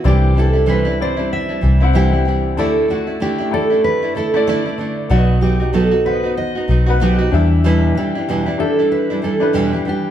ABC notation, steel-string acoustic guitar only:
X:1
M:4/4
L:1/16
Q:"Swing 16ths" 1/4=95
K:Clyd
V:1 name="Steel-string acoustic guitar"
G2 A2 B2 c2 e4 G3 z | A2 F2 G2 A2 B2 A2 d3 z | F2 G2 A2 B2 ^d4 G3 z | B2 G4 A2 B2 A2 G2 G2 |]